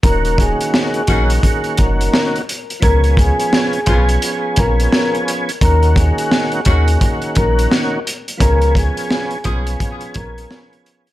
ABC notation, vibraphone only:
X:1
M:4/4
L:1/16
Q:"Swing 16ths" 1/4=86
K:Ebm
V:1 name="Vibraphone"
[Bb]2 [Aa]8 B3 z3 | [Bb]2 [Aa]8 [Bb]3 z3 | [Bb]2 [Aa]8 [Bb]3 z3 | [Bb]2 A8 [Bb]3 z3 |]